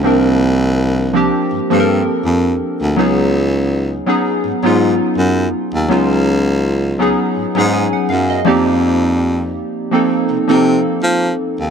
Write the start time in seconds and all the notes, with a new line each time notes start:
Already playing: F3 A#3 C4 D4 E4 F4
0.04 C2 F3 A#3 C4 D4 A#4
1.13 F3 A#3 C4 D4 G4
1.52 G2
1.70 G2 F3 A#3 C4 D4 A4
1.80 A#4
2.25 F2
2.82 D2
2.96 C#2 F#3 B3 C#4 D#4 G#4
4.06 F#3 B3 C#4 D#4 G#4
4.45 G#2
4.63 G#2 F#3 B3 C#4 D#4 F4
5.18 F#2
5.74 D#2
5.89 C#2 F#3 B3 C#4 D#4 F4
6.99 F#3 B3 C#4 D#4 G#4
7.37 G#2
7.55 G#2 F#3 B3 C#4 D#4 G#4
7.73 G#5
7.93 F#5
8.10 F#2 F5
8.30 D#5
8.45 F2 F3 A#3 C4 D#4 G4 D5
9.91 F3 A#3 C4 D#4 A4
10.30 C3
10.48 C3 F3 A#3 C4 D#4 A4
11.03 F3
11.60 D#2